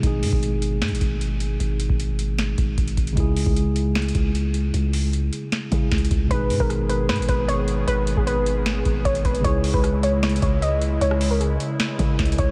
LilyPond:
<<
  \new Staff \with { instrumentName = "Synth pluck" } { \time 4/4 \key gis \minor \tempo 4 = 153 r1 | r1 | r1 | r1 |
b'8. ais'8. b'8 b'8 b'8 cis''4 | b'8. gis'16 b'2 cis''8 b'8 | cis''8. b'8. cis''8 cis''8 cis''8 dis''4 | cis''8. ais'16 gis'2~ gis'8 cis''8 | }
  \new Staff \with { instrumentName = "Tine electric piano" } { \time 4/4 \key gis \minor <b, gis dis' gis'>1~ | <b, gis dis' gis'>1 | <cis gis e' gis'>1~ | <cis gis e' gis'>2~ <cis gis e' gis'>8 <cis gis e' gis'>4. |
<b, gis dis' gis'>1~ | <b, gis dis' gis'>1 | <cis gis e' gis'>1~ | <cis gis e' gis'>2~ <cis gis e' gis'>8 <cis gis e' gis'>4. | }
  \new Staff \with { instrumentName = "Analog synth pad" } { \time 4/4 \key gis \minor r1 | r1 | r1 | r1 |
<dis b gis'>1~ | <dis b gis'>1 | <cis gis e'>1~ | <cis gis e'>1 | }
  \new Staff \with { instrumentName = "808-style bass" } { \clef bass \time 4/4 \key gis \minor gis,,8 gis,16 gis,,4~ gis,,16 gis,16 gis,,16 gis,,4. | gis,,8. gis,,4.~ gis,,16 gis,,8 gis,,8 gis,,8 | cis,8. cis,4.~ cis,16 cis,4. | cis,4. r4 cis8 cis,8 cis,8 |
gis,,8 gis,16 gis,,4~ gis,,16 gis,16 gis,,16 gis,,4. | gis,,8. gis,,4.~ gis,,16 gis,,8 gis,,8 gis,,8 | cis,8. cis,4.~ cis,16 cis,4. | cis,4. r4 cis8 cis,8 cis,8 | }
  \new DrumStaff \with { instrumentName = "Drums" } \drummode { \time 4/4 <hh bd>8 hho16 bd16 hh8 hh8 \tuplet 3/2 { <hh sn>16 hh16 hh16 <hh bd>16 r16 r16 } hh8 hh8 | hh8 hh16 bd16 hh8 hh8 <hh sn>8 <hh bd>8 <hh bd>16 hh16 <hh bd>16 hh16 | <hh bd>8 hho16 bd16 hh8 hh8 \tuplet 3/2 { <hh sn>16 hh16 hh16 <hh bd>16 r16 r16 } hh8 hh8 | hh8 hho8 hh8 hh8 <hh sn>8 <hh bd>8 \tuplet 3/2 { <hh bd sn>16 hh16 hh16 <hh bd>16 r16 r16 } |
<hh bd>8 hho16 bd16 <hh ss>8 hh8 \tuplet 3/2 { <hh sn>16 hh16 hh16 <hh bd>16 r16 r16 } hh8 hh8 | hh8 hh16 bd16 hh8 hh8 <hh sn>8 <hh bd>8 <hh bd>16 hh16 <hh bd>16 hh16 | <hh bd>8 hho16 bd16 <hh ss>8 hh8 \tuplet 3/2 { <hh sn>16 hh16 hh16 <hh bd>16 r16 r16 } hh8 hh8 | hh16 ss16 hho8 hh8 hh8 <hh sn>8 <hh bd>8 \tuplet 3/2 { <hh bd sn>16 hh16 hh16 <hh bd>16 r16 r16 } | }
>>